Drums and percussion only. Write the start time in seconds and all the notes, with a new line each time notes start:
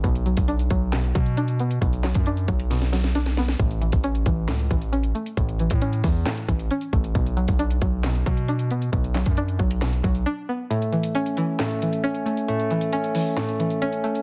0.04 kick, closed hi-hat
0.15 closed hi-hat
0.26 closed hi-hat
0.37 kick, closed hi-hat
0.48 closed hi-hat
0.59 closed hi-hat
0.70 kick, closed hi-hat
0.93 snare, clap, closed hi-hat
1.04 closed hi-hat
1.15 kick, closed hi-hat
1.26 closed hi-hat
1.37 closed hi-hat
1.48 closed hi-hat
1.60 closed hi-hat
1.71 closed hi-hat
1.82 kick, closed hi-hat
1.93 closed hi-hat
2.04 snare, clap, closed hi-hat
2.14 kick, closed hi-hat
2.26 closed hi-hat
2.37 closed hi-hat
2.48 kick, closed hi-hat, open hi-hat
2.60 closed hi-hat
2.71 snare, closed hi-hat
2.82 snare, closed hi-hat
2.93 snare, closed hi-hat
3.04 snare, closed hi-hat
3.15 snare, closed hi-hat
3.26 snare, closed hi-hat
3.37 snare, closed hi-hat
3.45 snare, closed hi-hat
3.52 closed hi-hat
3.60 kick, closed hi-hat
3.71 closed hi-hat
3.81 closed hi-hat
3.92 kick, closed hi-hat
4.04 closed hi-hat
4.15 closed hi-hat
4.26 kick, closed hi-hat
4.48 snare, clap, closed hi-hat
4.59 closed hi-hat
4.71 kick, closed hi-hat
4.81 closed hi-hat
4.93 closed hi-hat
5.03 closed hi-hat
5.15 closed hi-hat
5.26 closed hi-hat
5.37 kick, closed hi-hat
5.49 closed hi-hat
5.59 closed hi-hat
5.70 kick, closed hi-hat
5.81 closed hi-hat
5.93 closed hi-hat
6.04 kick, open hi-hat
6.26 snare, clap, closed hi-hat
6.37 closed hi-hat
6.49 kick, closed hi-hat
6.59 closed hi-hat
6.71 closed hi-hat
6.81 closed hi-hat
6.93 kick, closed hi-hat
7.04 closed hi-hat
7.15 kick, closed hi-hat
7.26 closed hi-hat
7.37 closed hi-hat
7.48 kick, closed hi-hat
7.59 closed hi-hat
7.70 closed hi-hat
7.81 kick, closed hi-hat
8.04 snare, clap, closed hi-hat
8.15 closed hi-hat
8.26 kick, closed hi-hat
8.37 closed hi-hat
8.48 closed hi-hat
8.59 closed hi-hat
8.71 closed hi-hat
8.82 closed hi-hat
8.93 kick, closed hi-hat
9.04 closed hi-hat
9.15 snare, clap, closed hi-hat
9.26 kick, closed hi-hat
9.37 closed hi-hat
9.48 closed hi-hat
9.59 kick, closed hi-hat, open hi-hat
9.71 closed hi-hat
9.82 snare, clap, closed hi-hat
9.93 closed hi-hat
10.04 kick, closed hi-hat
10.15 closed hi-hat
10.71 closed hi-hat
10.82 closed hi-hat
10.93 closed hi-hat
11.03 closed hi-hat
11.15 closed hi-hat
11.26 closed hi-hat
11.37 closed hi-hat
11.60 snare, clap, closed hi-hat
11.71 closed hi-hat
11.82 closed hi-hat
11.93 closed hi-hat
12.04 closed hi-hat
12.14 closed hi-hat
12.26 closed hi-hat
12.37 closed hi-hat
12.48 closed hi-hat
12.60 closed hi-hat
12.70 closed hi-hat
12.81 closed hi-hat
12.93 closed hi-hat
13.04 closed hi-hat
13.15 open hi-hat
13.37 snare, clap, closed hi-hat
13.48 closed hi-hat
13.60 closed hi-hat
13.70 closed hi-hat
13.82 closed hi-hat
13.92 closed hi-hat
14.04 closed hi-hat
14.15 closed hi-hat